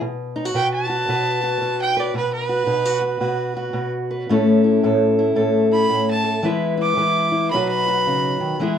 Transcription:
0.01 B2
0.36 D#4
0.45 F#4
0.54 B2 B4 G5
0.74 A5
0.89 F#4
1.08 B2 B4
1.44 F#4
1.61 B2
1.82 G5
1.97 B4 D5
2.14 B2 B4
2.33 B4
2.49 F#4
2.66 B2 D#4
2.85 F#4
3.01 F#4
3.20 B2 F#4
3.57 F#4
3.73 B2
4.11 B4
4.29 A2 A3 C#4 E4 A4
4.64 E4
4.83 A2 A4
5.19 E4
5.35 A2 A4
5.71 E4 B5
5.89 A2
6.10 A5
6.24 A4
6.43 E3 G#3 B3 E4 B4
6.77 E4
6.82 D6
6.97 E3 B4
7.32 E4
7.51 B2 F#3 D#4 B5
7.55 F#4 B4
7.68 B5
7.88 F#4
8.07 C#3
8.40 D#3
8.59 E3 G#3 B3 E4 G#4

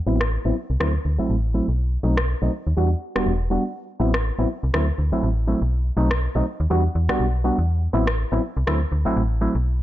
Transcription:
0.06 A1 F#3 B3 C4 E4
0.21 cross-stick
0.45 A1 F#3 B3 C4 E4
0.70 C2
0.80 D2 F#3 A3 C4 E4, cross-stick
1.05 D2
1.19 A1 F#3 A3 C4 E4
1.30 A1
1.54 F#3 A3 C4 E4
1.68 B1
2.03 B1 F#3 A3 C4 D#4
2.17 cross-stick
2.42 B1 F#3 A3 C4 D#4
2.67 D#2
2.77 E2 G3 B3 D4 F#4
3.15 E1 G3 B3 D4 F#4, cross-stick
3.26 E1
3.50 G3 B3 D4 F#4
4.00 A1 F#3 B3 C4 E4
4.14 cross-stick
4.38 A1 F#3 B3 C4 E4
4.63 C2
4.73 D2 F#3 A3 C4 E4, cross-stick
4.98 D2
5.12 A1 F#3 A3 C4 E4
5.23 A1
5.47 F#3 A3 C4 E4
5.62 B1
5.96 B1 F#3 A3 C4 D#4
6.11 cross-stick
6.35 B1 F#3 A3 C4 D#4
6.60 D#2
6.70 E2 G3 B3 D4 F#4
6.95 E2
7.09 B1 G3 B3 D4 F#4, cross-stick
7.20 B1
7.44 G3 B3 D4 F#4
7.58 E2
7.93 A1 F#3 B3 C4 E4
8.07 cross-stick
8.32 A1 F#3 B3 C4 E4
8.57 C2
8.67 D2 F#3 A3 C4 E4, cross-stick
8.92 D2
9.05 A1 F#3 A3 C4 E4
9.17 A1
9.41 F#3 A3 C4 E4
9.55 B1

